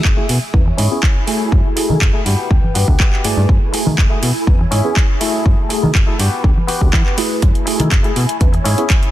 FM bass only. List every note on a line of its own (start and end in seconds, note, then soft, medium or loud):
0.05 0.14 F#1 loud
0.29 0.39 B2 loud
0.54 0.72 E2 medium
0.78 0.88 G#2 loud
1.52 1.62 F#2 medium
1.89 1.98 D#3 medium
2.01 2.11 F#1 loud
2.26 2.35 G2 loud
2.51 2.60 D2 medium
2.63 2.73 G2 soft
2.75 2.85 G2 medium
2.88 2.97 D2 loud
3.24 3.35 G2 soft
3.37 3.46 G2 loud
3.49 3.59 F#2 medium
3.86 3.95 D#3 medium
3.98 4.08 F#1 loud
4.23 4.32 B2 loud
4.47 4.66 E2 loud
4.72 4.81 G#2 loud
5.46 5.55 F#2 medium
5.83 5.92 D#3 medium
5.95 6.04 F#1 loud
6.19 6.29 G2 loud
6.44 6.54 D2 medium
6.82 6.90 D2 medium
6.93 7.03 E3 medium
7.43 7.52 F#2 loud
7.80 7.89 D#3 medium
7.92 8.01 F#1 loud
8.16 8.26 B2 loud
8.41 8.59 E2 medium
8.65 8.75 G#2 loud